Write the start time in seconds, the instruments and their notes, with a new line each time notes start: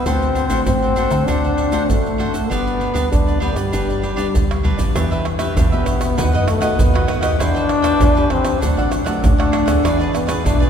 0.05 fm bass D2, nylon-string guitar D3 A3 C4 F#4, trombone C4, cavaquinho D4 A4 C5 F#5, pandeiro, shaker, surdo
0.22 pandeiro, shaker
0.35 cavaquinho D4 A4 C5 F#5, pandeiro, shaker
0.50 fm bass A1, nylon-string guitar A3 C4 F#4, cavaquinho D4 A4 C5 F#5, pandeiro, shaker, surdo
0.66 fm bass A1, nylon-string guitar A2, trombone C4, pandeiro, shaker, surdo
0.82 cavaquinho A4 C5 F#5, pandeiro, shaker
0.96 nylon-string guitar A3 C4 F#4, cavaquinho D4 A4 C5 F#5, pandeiro, shaker, surdo
1.11 fm bass D3, cavaquinho A4 C5 F#5, pandeiro, shaker, surdo
1.27 fm bass D2, nylon-string guitar D3 A3 C4 F#4, trombone D4, cavaquinho D4 A4 C5 F#5, pandeiro, shaker, surdo
1.44 cavaquinho A4 C5 F#5, pandeiro, shaker
1.57 cavaquinho D4 A4 C5 F#5, pandeiro
1.71 nylon-string guitar A3 C4 F#4, cavaquinho D4 A4 C5 F#5, pandeiro, shaker, surdo
1.89 fm bass A1, nylon-string guitar A2, trombone A3, pandeiro, shaker, surdo
2.06 pandeiro, shaker
2.18 nylon-string guitar A3 C4 F#4, cavaquinho D4 A4 C5 F#5, pandeiro
2.32 cavaquinho A4 C5 F#5, pandeiro, shaker, surdo
2.50 fm bass G1, nylon-string guitar G2 G3 B3 D4, trombone B3, cavaquinho D4 G4 B4 D5, pandeiro, shaker, surdo
2.67 pandeiro, shaker
2.79 cavaquinho D4 G4 B4 D5, pandeiro
2.94 fm bass D2, nylon-string guitar G3 B3 D4, cavaquinho D4 G4 B4 D5, pandeiro, shaker, surdo
3.11 fm bass D2, nylon-string guitar D3, trombone D4, pandeiro, shaker, surdo
3.27 cavaquinho G4 B4 D5, pandeiro, shaker
3.40 nylon-string guitar G3 B3 D4, trombone B3, cavaquinho D4 G4 B4 D5, pandeiro, surdo
3.56 fm bass G2, trombone G3, cavaquinho G4 B4 D5, pandeiro, shaker, surdo
3.72 fm bass G1, nylon-string guitar G2 G3 B3 D4, cavaquinho D4 G4 B4 D5, pandeiro, shaker, surdo
3.89 cavaquinho G4 B4 D5, pandeiro, shaker
4.02 cavaquinho D4 G4 B4 D5, pandeiro
4.16 nylon-string guitar G3 B3 D4, cavaquinho D4 G4 B4 D5, pandeiro, shaker, surdo
4.34 fm bass D2, nylon-string guitar D3, pandeiro, shaker, surdo
4.51 pandeiro, tamborim, shaker
4.63 nylon-string guitar G3 B3 D4, cavaquinho D4 G4 B4 D5, surdo, pandeiro
4.78 cavaquinho G4 B4 D5, pandeiro, shaker, surdo
4.95 fm bass E2, nylon-string guitar E3 B3 D4 G4, cavaquinho D4 G4 B4 E5, pandeiro, tamborim, shaker, surdo
5.11 cavaquinho G4 B4 E5, pandeiro, shaker
5.25 muted cavaquinho stroke, pandeiro, tamborim
5.39 nylon-string guitar B3 D4 G4, cavaquinho G4 B4 E5, pandeiro, tamborim, shaker
5.56 fm bass E2, nylon-string guitar B2, trombone B3, cavaquinho D4 G4 B4 E5, pandeiro, shaker, surdo
5.72 nylon-string guitar B3 D4 G4, cavaquinho G4 B4 E5, pandeiro, shaker
5.86 pandeiro, tamborim, shaker, surdo
6.01 pandeiro, tamborim, shaker
6.17 fm bass D#2, nylon-string guitar D#3 B3 D#4 F#4, cavaquinho F#4 B4 D#5 F#5, pandeiro, shaker, surdo
6.33 fm bass F#2, cavaquinho B4 D#5 F#5, pandeiro, shaker
6.47 trombone A3, muted cavaquinho stroke, pandeiro, tamborim, shaker
6.61 nylon-string guitar B3 D#4 F#4, cavaquinho B4 D#5 F#5, pandeiro, tamborim, shaker
6.79 fm bass D#2, nylon-string guitar D#3, trombone B3, pandeiro, shaker, surdo
6.94 nylon-string guitar B3 D#4 F#4, cavaquinho B4 D#5 F#5, pandeiro, tamborim, shaker
7.07 cavaquinho F#4 B4 D#5 F#5, pandeiro, tamborim
7.21 fm bass D#2, nylon-string guitar B3 C4 G4, cavaquinho B4 D#5 F#5, pandeiro, tamborim, shaker
7.39 fm bass E2, nylon-string guitar E3, trombone D4, cavaquinho E4 B4 C5 G5, pandeiro, tamborim, shaker, surdo
7.55 cavaquinho B4 C5 G5, pandeiro, shaker
7.69 muted cavaquinho stroke, pandeiro, tamborim
7.82 nylon-string guitar B3 C4 G4, cavaquinho B4 C5 G5, pandeiro, tamborim, shaker
8.00 fm bass E2, nylon-string guitar E3, cavaquinho E4 B4 C5 G5, pandeiro, shaker, surdo
8.15 nylon-string guitar C4 G4, cavaquinho B4 C5 G5, pandeiro, shaker
8.30 trombone C4, pandeiro, tamborim, surdo
8.45 pandeiro, tamborim, shaker
8.61 fm bass D2, nylon-string guitar D3 F#3 A3 D4, cavaquinho D4 A4 D5 F#5, trombone D4, pandeiro, shaker, surdo
8.77 fm bass A1, cavaquinho A4 D5 F#5, pandeiro, shaker
8.91 muted cavaquinho stroke, pandeiro, tamborim, shaker
9.04 nylon-string guitar F#3 A3 D4, cavaquinho A4 D5 F#5, pandeiro, tamborim, shaker
9.23 fm bass D2, nylon-string guitar A2, trombone D4, pandeiro, shaker, surdo
9.38 nylon-string guitar F#3 A3 D4, cavaquinho A4 D5 F#5, pandeiro, tamborim, shaker
9.52 cavaquinho D4 A4 D5 F#5, pandeiro, tamborim
9.66 fm bass D2, nylon-string guitar B3 D4 G#4, cavaquinho A4 D5 F#5, pandeiro, tamborim, shaker
9.83 fm bass E2, nylon-string guitar E3, cavaquinho E4 G#4 B4 D5, pandeiro, tamborim, shaker, surdo
10.00 cavaquinho G#4 B4 D5, pandeiro, shaker
10.13 trombone B3, muted cavaquinho stroke, pandeiro, tamborim, shaker
10.27 nylon-string guitar B3 D4 G#4, cavaquinho G#4 B4 D5, pandeiro, tamborim, shaker
10.44 fm bass B1, nylon-string guitar B2, trombone D4, cavaquinho E4 G#4 B4 D5, pandeiro, shaker, surdo
10.60 nylon-string guitar B3 D4 G#4, cavaquinho G#4 B4 D5, pandeiro, shaker